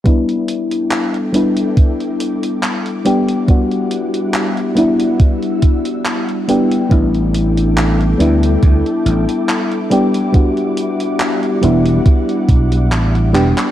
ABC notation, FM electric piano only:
X:1
M:4/4
L:1/8
Q:"Swing 16ths" 1/4=70
K:Em
V:1 name="FM electric piano"
[G,B,DE]3 [G,B,DE]4 [G,B,DG] | [G,B,DF]3 [G,B,DE]4 [G,B,DG] | [G,B,DE]3 [G,B,DE]4 [G,B,DG] | [G,B,DF]3 [G,B,DE]4 [G,B,DG] |]